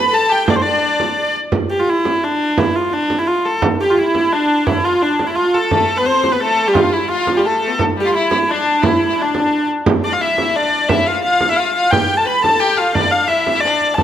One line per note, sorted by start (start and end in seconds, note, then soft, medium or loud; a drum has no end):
0.00 0.14 B5 medium
0.08 0.31 A4 medium
0.08 0.12 B4 medium
0.14 0.32 A5 loud
0.29 0.46 G4 medium
0.29 0.50 G5 medium
0.47 0.59 D4 medium
0.47 0.56 D5 medium
0.47 frame drum loud
0.56 0.62 C5 medium
0.60 1.31 D4 medium
0.60 1.36 D5 medium
0.65 frame drum soft
1.00 frame drum medium
1.52 frame drum medium
1.70 1.80 G4 medium
1.80 1.89 F4 medium
1.88 2.24 E4 medium
1.88 frame drum soft
2.05 frame drum medium
2.24 2.59 D4 medium
2.58 2.76 E4 medium
2.58 frame drum loud
2.76 2.93 F4 medium
2.92 3.19 D4 medium
2.92 frame drum soft
3.10 frame drum medium
3.18 3.27 E4 medium
3.27 3.45 F4 medium
3.45 3.61 A4 medium
3.62 frame drum loud
3.81 3.90 G4 medium
3.90 3.98 F4 medium
3.97 4.33 E4 medium
3.97 frame drum soft
4.15 frame drum medium
4.33 4.67 D4 medium
4.67 4.84 E4 medium
4.67 frame drum medium
4.84 5.02 F4 medium
5.02 5.28 D4 medium
5.19 frame drum medium
5.27 5.35 E4 medium
5.35 5.54 F4 medium
5.35 frame drum soft
5.54 5.71 A4 medium
5.54 frame drum soft
5.71 5.96 A3 medium
5.71 5.98 A4 medium
5.71 frame drum medium
5.98 6.08 B3 medium
5.98 6.06 B4 medium
6.06 6.34 C4 medium
6.06 6.32 C5 loud
6.06 frame drum soft
6.24 frame drum medium
6.32 6.40 B3 medium
6.32 6.41 B4 loud
6.41 6.68 A3 medium
6.41 6.68 A4 loud
6.67 6.77 G3 medium
6.67 6.76 G4 medium
6.74 6.93 F4 medium
6.74 6.94 F4 medium
6.74 frame drum loud
6.93 7.09 E4 medium
6.93 7.10 E4 medium
7.09 7.37 F4 medium
7.09 7.34 F4 loud
7.09 frame drum soft
7.27 frame drum medium
7.36 7.47 G3 medium
7.36 7.46 G4 medium
7.45 7.61 A3 medium
7.45 7.80 A4 medium
7.62 7.69 A3 medium
7.67 7.79 A3 medium
7.67 7.72 B3 medium
7.79 frame drum medium
7.96 8.06 G3 medium
7.96 8.07 G4 medium
8.05 8.13 F4 medium
8.05 8.14 F4 medium
8.14 8.30 E4 medium
8.14 8.51 E4 medium
8.14 frame drum soft
8.31 8.39 E4 medium
8.31 frame drum medium
8.48 8.84 D4 loud
8.48 8.86 D4 medium
8.83 9.07 E4 medium
8.83 9.13 E4 medium
8.83 frame drum loud
9.01 frame drum soft
9.08 9.16 E4 medium
9.13 9.22 E4 medium
9.17 9.66 D4 medium
9.17 frame drum soft
9.22 9.68 D4 medium
9.35 frame drum medium
9.52 frame drum soft
9.86 frame drum loud
10.04 10.13 D4 medium
10.04 10.13 D5 medium
10.12 10.23 F4 medium
10.12 10.21 F5 medium
10.21 10.38 E4 medium
10.21 10.56 E5 medium
10.21 frame drum soft
10.38 10.57 E4 medium
10.38 frame drum medium
10.56 10.90 D4 medium
10.56 10.89 D5 medium
10.89 11.09 E4 medium
10.89 11.06 E5 medium
10.89 frame drum loud
11.06 11.24 F4 medium
11.06 11.22 F5 medium
11.22 11.48 F4 medium
11.22 11.49 F5 medium
11.22 frame drum soft
11.41 frame drum medium
11.49 11.61 E4 medium
11.49 11.58 E5 medium
11.56 11.75 F4 medium
11.56 11.72 F5 medium
11.72 11.94 F4 medium
11.72 11.91 F5 medium
11.91 12.18 G4 medium
11.91 12.17 G5 medium
11.91 frame drum loud
12.17 12.27 A4 medium
12.17 12.27 A5 loud
12.26 12.42 B4 medium
12.26 12.44 B5 loud
12.26 frame drum soft
12.42 12.62 A4 medium
12.42 12.60 A5 loud
12.42 frame drum medium
12.60 12.80 G4 medium
12.60 12.78 G5 loud
12.77 12.94 F4 medium
12.77 12.95 F5 medium
12.95 13.02 D4 medium
12.95 13.12 D5 medium
12.95 frame drum medium
13.01 13.08 E4 medium
13.07 13.30 D4 medium
13.11 13.29 F5 medium
13.28 13.54 E4 medium
13.28 13.52 E5 medium
13.28 frame drum soft
13.47 frame drum medium
13.52 13.62 E4 medium
13.52 13.61 E5 medium
13.60 13.87 D4 medium
13.60 13.94 D5 medium
13.60 frame drum soft
13.80 frame drum soft
13.94 14.03 A4 medium
13.94 14.03 A5 loud
13.94 frame drum medium